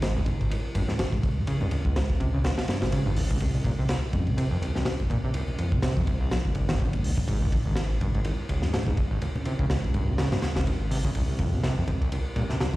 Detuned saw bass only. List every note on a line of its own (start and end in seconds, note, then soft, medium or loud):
0.00 0.58 G#1 medium
0.75 0.84 G#1 medium
1.12 1.20 G#2 medium
1.85 2.51 C#2 medium
2.82 2.98 G#1 loud
3.06 3.32 G#1 medium
3.31 3.38 C#2 medium
3.41 3.72 C2 loud
3.79 4.45 C2 medium
4.62 4.71 C2 medium
5.00 5.07 G1 medium
5.72 6.30 C2 medium
6.31 6.41 A#1 medium
6.45 7.05 G1 medium
7.04 7.13 D#2 medium
7.28 7.59 G#1 medium
7.66 8.32 G#1 medium
8.49 8.59 G#1 medium
8.87 8.94 G#2 loud
9.59 10.25 C#2 medium
10.56 10.72 G#1 loud
10.80 11.06 G#1 medium
11.05 11.12 C#2 medium
11.16 11.47 C2 medium
11.53 12.19 C2 medium
12.36 12.46 C2 medium